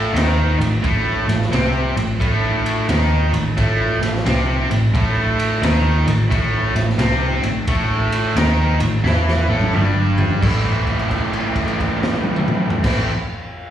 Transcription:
0.00 0.11 A1 loud
0.00 0.13 A2 medium
0.00 0.14 A3 loud
0.13 0.55 D#2 loud
0.13 0.57 D#3 loud
0.13 0.57 D#4 loud
0.13 ride loud
0.18 snare loud
0.59 0.81 A1 medium
0.59 0.78 A2 medium
0.59 ride medium
0.83 1.25 A1 medium
0.83 1.26 A2 medium
0.83 1.26 A3 loud
0.83 kick loud
0.83 ride medium
1.28 1.50 A1 medium
1.28 1.47 A2 medium
1.28 snare soft
1.28 ride medium
1.42 snare soft
1.52 1.93 C2 medium
1.52 1.94 C3 medium
1.52 1.94 C4 loud
1.52 snare loud
1.52 ride loud
1.96 2.18 A1 medium
1.96 2.15 A2 medium
1.96 ride medium
2.20 2.85 A1 medium
2.20 2.88 A2 loud
2.20 2.88 A3 loud
2.20 kick loud
2.20 ride loud
2.66 ride medium
2.89 3.30 D#2 loud
2.89 3.31 D#3 loud
2.89 3.32 D#4 loud
2.89 snare loud
2.89 ride loud
3.33 3.55 A1 medium
3.33 3.52 A2 medium
3.33 ride medium
3.57 3.99 A1 loud
3.57 4.00 A2 loud
3.57 4.00 A3 loud
3.57 kick medium
3.57 ride loud
4.02 4.24 A1 loud
4.02 4.21 A2 medium
4.02 snare soft
4.02 ride medium
4.16 snare soft
4.26 4.67 C2 medium
4.26 4.68 C3 loud
4.26 4.68 C4 medium
4.26 snare loud
4.26 ride loud
4.70 4.92 A1 medium
4.70 4.89 A2 medium
4.70 ride medium
4.94 5.59 A1 medium
4.94 5.61 A2 medium
4.94 5.62 A3 loud
4.94 kick loud
4.94 ride loud
5.39 ride medium
5.62 6.03 D#2 loud
5.62 6.05 D#3 loud
5.62 6.05 D#4 loud
5.62 snare loud
5.62 ride loud
6.07 6.29 A1 medium
6.07 6.26 A2 medium
6.07 ride medium
6.30 6.73 A1 loud
6.30 6.73 A2 medium
6.30 6.74 A3 loud
6.30 kick loud
6.30 ride loud
6.75 6.97 A1 medium
6.75 6.94 A2 medium
6.75 snare soft
6.75 ride medium
6.90 snare soft
6.98 7.40 C2 loud
6.98 7.41 C3 medium
6.98 7.42 C4 loud
6.98 snare loud
6.98 ride loud
7.43 7.66 A1 medium
7.43 7.63 A2 medium
7.43 ride medium
7.67 8.33 A1 medium
7.67 8.36 A2 medium
7.67 8.36 A3 loud
7.67 kick loud
7.67 ride loud
8.12 ride medium
8.35 8.77 D#2 loud
8.35 8.79 D#3 loud
8.35 8.79 D#4 loud
8.35 snare loud
8.35 ride loud
8.80 9.03 A1 medium
8.80 9.00 A2 medium
8.80 ride medium
9.03 9.45 E2 medium
9.03 9.47 E3 loud
9.03 9.47 E4 loud
9.03 snare medium
9.28 snare medium
9.48 9.71 A1 loud
9.48 9.72 A2 medium
9.48 9.73 A3 loud
9.61 high tom medium
9.72 10.37 G1 medium
9.72 10.41 G2 medium
9.72 10.42 G3 medium
9.72 mid tom medium
10.18 floor tom loud
10.31 floor tom medium
10.41 12.69 A1 loud
10.41 12.83 A2 loud
10.41 12.84 E3 loud
10.41 12.85 A3 medium
10.41 12.86 C4 medium
10.41 12.86 E4 loud
10.41 kick loud
10.41 crash loud
10.87 kick medium
10.87 crash soft
10.99 crash soft
11.11 kick medium
11.11 crash medium
11.33 crash medium
11.55 kick medium
11.55 crash medium
11.68 crash medium
11.80 kick medium
11.80 crash soft
12.03 snare loud
12.24 high tom medium
12.36 mid tom loud
12.48 mid tom loud
12.70 floor tom loud
12.83 13.08 A1 loud
12.83 13.09 A2 loud
12.83 13.10 E3 loud
12.83 13.10 A3 loud
12.83 13.10 C4 loud
12.83 13.11 E4 loud
12.83 kick loud
12.83 snare loud
12.83 crash loud

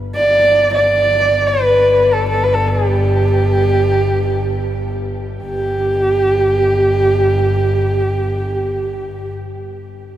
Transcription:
0.00 0.21 G1 medium
0.15 0.69 D5 loud
0.22 5.46 G1 medium
0.74 1.49 D5 medium
1.47 2.14 B4 medium
2.13 2.29 A4 medium
2.29 2.45 A4 medium
2.43 2.55 B4 medium
2.54 2.69 A4 medium
2.68 2.86 G#4 medium
2.86 4.94 G4 medium
5.45 9.36 G1 medium
5.45 9.33 G4 medium

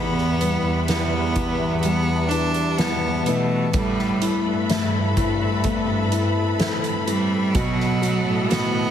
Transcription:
0.00 0.61 E2 medium
0.00 3.74 E2 medium
0.00 0.39 E3 medium
0.00 0.40 B3 soft
0.00 0.87 B3 medium
0.00 0.88 E4 medium
0.00 3.70 G4 medium
0.00 3.70 B4 medium
0.00 3.70 E5 medium
0.00 1.80 B5 medium
0.18 snare soft
0.41 0.88 E3 medium
0.41 1.82 G3 medium
0.41 closed hi-hat medium
0.65 3.23 E2 medium
0.88 1.35 E3 soft
0.88 1.79 B3 medium
0.88 3.74 E4 medium
0.88 snare medium
0.88 closed hi-hat medium
1.36 1.83 E3 soft
1.36 2.31 B3 medium
1.36 kick medium
1.36 closed hi-hat medium
1.82 2.31 E3 soft
1.82 2.78 G3 medium
1.82 2.31 B3 loud
1.82 3.72 A5 medium
1.82 closed hi-hat medium
2.29 2.78 E3 medium
2.29 3.26 B3 medium
2.29 2.79 D4 medium
2.29 closed hi-hat medium
2.54 closed hi-hat soft
2.78 3.26 E3 medium
2.78 3.84 G3 medium
2.78 3.28 B3 medium
2.78 snare medium
2.78 closed hi-hat medium
3.26 3.71 B2 medium
3.26 3.73 E3 medium
3.26 3.74 A3 medium
3.26 4.22 B3 medium
3.26 closed hi-hat medium
3.74 7.54 A2 medium
3.74 4.42 A2 loud
3.74 4.66 G3 medium
3.74 4.68 A3 medium
3.74 4.68 E4 medium
3.74 7.52 A4 medium
3.74 7.51 B4 medium
3.74 7.52 E5 medium
3.74 8.91 B5 medium
3.74 kick loud
3.74 closed hi-hat medium
3.99 snare soft
4.22 5.64 B3 medium
4.22 5.17 E4 medium
4.22 closed hi-hat medium
4.46 7.03 G2 medium
4.69 5.64 A3 medium
4.69 7.55 E4 medium
4.69 snare loud
4.69 closed hi-hat medium
5.17 6.11 C4 medium
5.17 6.11 E4 soft
5.17 kick medium
5.17 closed hi-hat medium
5.64 6.58 A3 medium
5.64 6.59 B3 medium
5.64 kick medium
5.64 closed hi-hat medium
6.12 7.06 C4 medium
6.12 7.06 E4 medium
6.12 closed hi-hat medium
6.59 7.52 A3 medium
6.59 8.02 B3 medium
6.59 snare loud
6.59 closed hi-hat medium
6.84 closed hi-hat soft
7.07 7.58 G3 medium
7.07 7.65 C4 medium
7.07 7.54 E4 soft
7.07 closed hi-hat medium
7.54 8.91 B2 medium
7.54 8.22 B2 loud
7.54 8.52 F#3 loud
7.54 8.49 B3 medium
7.54 8.49 F#4 medium
7.54 8.91 A4 medium
7.54 8.91 D#5 medium
7.54 8.91 F#5 medium
7.54 kick loud
7.54 closed hi-hat medium
7.80 snare soft
8.02 8.91 A3 medium
8.02 8.91 F#4 medium
8.02 closed hi-hat medium
8.27 8.91 A2 medium
8.50 8.91 B3 soft
8.50 8.91 B3 loud
8.50 8.91 F#4 medium
8.50 snare loud
8.50 closed hi-hat medium

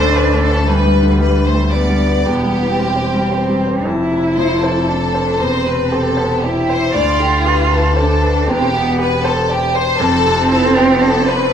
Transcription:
0.00 0.65 D2 medium
0.00 2.28 D2 soft
0.00 0.71 A2 soft
0.00 0.33 A3 soft
0.00 0.65 D4 medium
0.00 0.16 C5 medium
0.00 0.16 C5 soft
0.16 0.42 B4 soft
0.16 0.44 C5 soft
0.33 0.61 A3 soft
0.42 0.68 A4 soft
0.50 0.68 C5 soft
0.68 2.22 D2 soft
0.68 1.47 G3 medium
0.68 1.20 B4 medium
0.85 1.13 G3 soft
1.03 1.31 D3 soft
1.20 1.48 G3 soft
1.20 1.46 B4 soft
1.37 1.65 B4 soft
1.45 1.73 A3 medium
1.45 1.73 C5 soft
1.54 1.83 G3 soft
1.71 2.25 B3 medium
1.71 2.00 B4 soft
1.71 2.26 D5 soft
1.90 2.18 G3 soft
2.08 2.26 B4 soft
2.25 3.85 E1 soft
2.25 3.81 E2 soft
2.25 2.80 B3 medium
2.25 3.65 G4 medium
2.43 2.72 G3 soft
2.61 2.89 E3 soft
2.78 3.07 G3 soft
2.78 3.31 C4 soft
2.96 3.25 C5 soft
3.14 3.42 G3 soft
3.32 3.85 C4 medium
3.32 3.60 C5 soft
3.49 3.78 G3 soft
3.67 3.85 C5 soft
3.84 5.42 F1 soft
3.84 5.36 F2 soft
3.84 4.90 E4 medium
4.11 4.53 C3 soft
4.37 4.78 F3 soft
4.37 4.61 C5 soft
4.63 5.40 A4 soft
4.63 5.04 C5 soft
4.89 5.39 D4 medium
4.89 5.14 D5 soft
5.14 5.40 C5 soft
5.39 6.97 E1 soft
5.39 6.91 E2 soft
5.39 6.18 C4 medium
5.39 5.66 C5 medium
5.66 6.07 C3 soft
5.66 5.92 B4 soft
5.92 6.33 G4 soft
5.92 6.43 A4 soft
6.17 6.45 B3 medium
6.17 6.59 C5 soft
6.43 6.93 E4 medium
6.43 6.69 G4 soft
6.43 6.69 D5 soft
6.69 6.95 C5 medium
6.69 6.95 C5 soft
6.94 8.44 D2 soft
6.94 8.50 D2 soft
6.94 7.94 F4 medium
6.94 7.20 D5 medium
7.20 7.61 D3 soft
7.20 7.46 G4 medium
7.45 7.86 G4 soft
7.45 7.72 B4 soft
7.71 8.48 A4 soft
7.71 8.12 B4 soft
7.96 8.49 D4 medium
7.96 8.22 C5 soft
8.22 8.48 B4 soft
8.47 10.02 E1 medium
8.47 9.96 E2 medium
8.47 8.73 C4 medium
8.47 8.99 G4 medium
8.73 9.14 B2 soft
8.73 9.23 B3 medium
8.99 9.40 G4 medium
8.99 9.24 B4 medium
9.24 9.50 A4 medium
9.24 9.65 C5 soft
9.49 9.75 G4 medium
9.49 9.75 D5 soft
9.75 10.01 C5 medium
9.75 10.01 C5 soft
10.00 11.53 F1 medium
10.00 11.51 F2 medium
10.00 11.53 C4 loud
10.00 10.49 A4 medium
10.26 10.67 C3 medium
10.50 10.92 E4 medium
10.50 10.76 A4 medium
10.77 11.03 G4 medium
10.77 11.18 C5 medium
11.02 11.29 A4 medium
11.02 11.29 D5 soft
11.28 11.53 B4 medium
11.28 11.53 C5 medium

